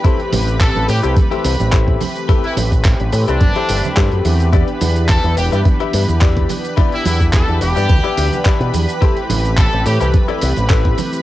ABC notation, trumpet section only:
X:1
M:4/4
L:1/16
Q:"Swing 16ths" 1/4=107
K:Ador
V:1 name="Trumpet section"
z4 A2 G G z8 | z E z4 z D6 z3 | z4 A2 G G z8 | z E E z A z G6 z4 |
z4 A2 G G z8 |]